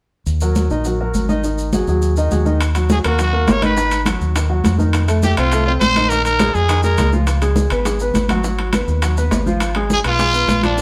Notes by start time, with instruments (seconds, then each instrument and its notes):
0.26 fingered electric bass D#2, high conga, maracas
0.41 grand piano F#3 F#4 A#4, high conga, maracas
0.55 high conga, maracas
0.70 fingered electric bass A#1, grand piano D#3 D#4 D#5, maracas
0.84 grand piano F#3 F#4 A#4, high conga, maracas
1.00 grand piano F#3 F#4 A#4, high conga
1.14 fingered electric bass G#1, high conga, maracas
1.29 grand piano D#3 D#4 D#5, high conga, maracas
1.44 grand piano D#3 D#4 D#5, maracas
1.58 high conga, maracas
1.73 grand piano F#3 F#4 G#4, high conga, maracas
1.87 fingered electric bass D#2, grand piano F#3 F#4 G#4, high conga, maracas
2.02 high conga, maracas
2.16 grand piano D#3 D#4 D#5, high conga, maracas
2.31 fingered electric bass D#2, grand piano F#3 F#4 G#4, high conga, maracas
2.45 grand piano D#3 D#4 D#5, high conga, maracas
2.61 high bongo, high timbale, maracas
2.75 grand piano F#3 F#4, high bongo, high conga, high timbale, maracas
2.90 trumpet G#4, high bongo, high conga, maracas
3.04 fingered electric bass D#2, grand piano A#3 A#4, trumpet F#4, high timbale, maracas
3.18 grand piano F#3 F#4, trumpet F#4, high bongo, high conga, high timbale, maracas
3.33 grand piano A#3 A#4, high bongo, high conga
3.47 fingered electric bass G#1, high bongo, low bongo, high conga, high timbale, low timbale, maracas
3.51 trumpet C#5
3.62 grand piano D#3 D#4, trumpet B4, high bongo, high conga, high timbale, maracas
3.77 grand piano D#3 D#4, high bongo, maracas
3.91 high bongo, high conga, high timbale, maracas
4.06 grand piano F#3 F#4, high bongo, high conga, high timbale, maracas
4.21 fingered electric bass D#2, high conga, maracas
4.35 grand piano D#3 D#4, high bongo, high conga, high timbale, maracas
4.49 grand piano F#3 F#4, high bongo, high conga
4.64 fingered electric bass F2, high bongo, low bongo, high conga, high timbale, maracas
4.78 grand piano D#3 D#4, high bongo, high conga, maracas
4.93 high bongo, high conga, high timbale, maracas
5.08 grand piano A3 A4, high bongo, high conga, high timbale, maracas
5.23 trumpet G4, high bongo, high conga, maracas
5.37 fingered electric bass C2, grand piano C4 C5, trumpet F4, high timbale, maracas
5.52 grand piano A3 A4, high bongo, high conga, high timbale, maracas
5.66 grand piano C4 C5, trumpet F4, high bongo, high conga
5.80 fingered electric bass A#1, trumpet C5, high bongo, low bongo, high conga, high timbale, maracas
5.95 grand piano D#3 D#4, high bongo, high conga, high timbale, maracas
6.09 grand piano D#3 D#4, trumpet A#4, high bongo, maracas
6.25 trumpet A#4, high bongo, high conga, high timbale, maracas
6.39 grand piano G#3 G#4, high bongo, high conga, high timbale, maracas
6.54 fingered electric bass F2, trumpet G#4, high conga, maracas
6.69 grand piano D#3 D#4, high bongo, high conga, high timbale, maracas
6.83 grand piano G#3 G#4, trumpet A#4, high bongo, high conga, maracas
6.98 fingered electric bass C#2, high bongo, low bongo, high conga, high timbale, low timbale, maracas
7.12 grand piano F3 F4, high bongo, high conga, maracas
7.27 high bongo, high conga, high timbale, maracas
7.42 grand piano G#3 G#4, high bongo, high conga, high timbale, maracas
7.56 high bongo, high conga, maracas
7.70 fingered electric bass G#1, grand piano B3 B4, high timbale, maracas
7.85 grand piano G#3 G#4, high bongo, high conga, high timbale, maracas
8.00 grand piano B3 B4, high bongo, high conga, maracas
8.14 fingered electric bass G#1, high bongo, low bongo, high conga, high timbale, maracas
8.29 grand piano F#3 F#4, high bongo, high conga, high timbale, maracas
8.43 grand piano F#3 F#4, high bongo, high conga, maracas
8.59 high bongo, high conga, high timbale
8.73 grand piano B3 B4, high bongo, high conga, high timbale, maracas
8.88 fingered electric bass D#2, high conga, maracas
9.02 grand piano F#3 F#4, high bongo, high conga, high timbale, maracas
9.17 grand piano B3 B4, high bongo, high conga, maracas
9.31 fingered electric bass G#1, high bongo, low bongo, high conga, high timbale, low timbale, maracas
9.46 grand piano F3 F4, high bongo, high conga, maracas
9.60 high bongo, high conga, high timbale, maracas
9.75 grand piano G#3 G#4, high bongo, high conga, high timbale
9.90 trumpet G#4, high bongo, high conga, maracas
10.04 fingered electric bass B1, grand piano B3 B4, trumpet F4, high timbale, maracas
10.19 grand piano G#3 G#4, high bongo, high conga, high timbale, maracas
10.33 grand piano B3 B4, high bongo, high conga, maracas
10.48 fingered electric bass A#1, high bongo, low bongo, high conga, high timbale, maracas
10.63 grand piano F3 F4, trumpet D4, high bongo, high conga, high timbale, maracas
10.78 grand piano F3 F4, high bongo, high conga, maracas